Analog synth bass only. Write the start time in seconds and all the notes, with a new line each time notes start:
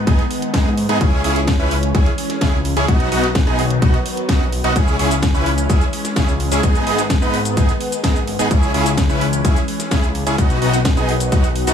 0.07 G#1
0.54 G#2
0.89 G#2
1.01 C#2
1.24 C#2
1.59 C#2
1.95 C#2
2.42 C#2
2.77 C#2
2.88 B1
3.12 B1
3.47 B1
3.82 B1
4.29 B1
4.64 B1
4.76 C#2
4.99 C#2
5.34 C#2
5.70 C#2
6.17 C#2
6.52 C#2
6.63 G#1
6.87 G#1
7.22 G#1
7.57 G#1
8.04 G#1
8.39 G#1
8.51 C#2
8.74 C#2
9.09 C#2
9.45 C#2
9.92 C#2
10.27 C#2
10.38 B1
10.62 B1
10.97 B1
11.32 B1
11.67 B1